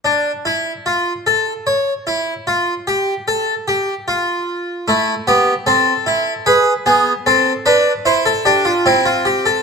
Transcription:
\new Staff \with { instrumentName = "Harpsichord" } { \time 3/4 \key a \phrygian \tempo 4 = 75 << { d'8 e'8 f'8 a'8 cis''8 e'8 | f'8 g'8 a'8 g'8 f'4 | e'8 g'8 a'4 b'8 gis'8 | a'8 b'8 c''16 a'16 g'16 f'16 e'16 f'16 g'16 a'16 | } \\ { r2. | r2. | a8 b8 c'8 e'8 gis'8 b8 | c'8 d'8 e'8 d'8 c'4 | } >> }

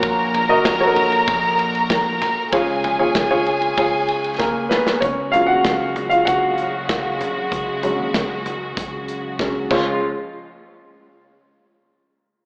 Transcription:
<<
  \new Staff \with { instrumentName = "Violin section" } { \time 4/4 \key des \major \tempo 4 = 96 <bes' bes''>1 | <aes' aes''>1 | r1 | r1 |
r1 | }
  \new Staff \with { instrumentName = "Grand piano" } { \time 4/4 \key des \major << { r1 | r2. <bes bes'>8 <ces' ces''>8 | <des' des''>8 <f' f''>16 <ges' ges''>4 <f' f''>16 <ges' ges''>2~ | <ges' ges''>2. r4 |
r1 | } \\ { <ges' bes' des''>8 r16 <ges' bes' ees''>16 r16 <ges' a' bes' des''>4. r4 r16 | <f' aes' des''>8 r16 <f' aes' des''>16 r16 <f' aes' des''>8 r16 <f' aes' des''>4. r8 | r1 | r2. r8 <aes des' f' des''>8 |
r1 | } >> }
  \new Staff \with { instrumentName = "Grand piano" } { \clef bass \time 4/4 \key des \major <bes, bes>4 r2. | <des aes>4. r2 r8 | r8 <ges aes des'>2.~ <ges aes des'>8~ | <ges aes des'>8 <ges aes des'>8 r2 <ges aes des'>8 des,8 |
r1 | }
  \new Staff \with { instrumentName = "String section" } { \clef bass \time 4/4 \key des \major r1 | r1 | <des ges aes ges'>1~ | <des ges aes ges'>2.~ <des ges aes ges'>8 <des f aes f'>8 |
r1 | }
  \new Staff \with { instrumentName = "Fingered electric bass" } { \clef bass \time 4/4 \key des \major bes,,8. ges,,16 bes,,4 bes,,4. r8 | des,8. ees,16 des,4 des,4. r8 | des,8. ees,16 des,4 des,4. r8 | des,8. ees,16 des,4 des,4. des,8 |
r1 | }
  \new DrumStaff \with { instrumentName = "Drums" } \drummode { \time 4/4 <bd cymr>8 <cymr tomfh>8 <bd cymr sn>8 <cymr tomfh>16 cymr16 <bd cymr>8 cymr16 cymr16 <bd cymr sn>8 <cymr sn tomfh>8 | <bd cymr>8 <cymr tomfh>8 <bd cymr sn>8 cymr16 cymr16 <bd cymr>8 cymr16 cymr16 <bd sn>8 sn16 sn16 | <hh bd>8 <hh tomfh>8 <hh bd sn>8 <hh tomfh>16 hh16 <hh bd>8 hh8 <hh bd sn>8 <hh tomfh>8 | <hh bd>8 <hh tomfh>8 <hh bd sn>8 <hh tomfh>8 <hh bd>8 hh8 <bd sn>8 <cymc bd>8 |
r4 r4 r4 r4 | }
>>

